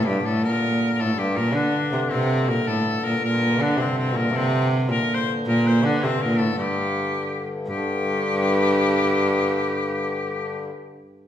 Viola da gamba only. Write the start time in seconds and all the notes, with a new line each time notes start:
0.07 G2
0.25 A2
0.43 A#2
1.00 A2
1.18 G2
1.37 A#2
1.54 D3
1.92 C3
2.12 C3
2.49 A#2
2.68 A2
3.03 A#2
3.21 A#2
3.60 D3
3.77 C3
4.15 A#2
4.34 C3
4.89 A#2
5.46 A#2
5.84 D3
6.04 C3
6.22 A#2
6.39 A2
6.57 G2
7.67 G2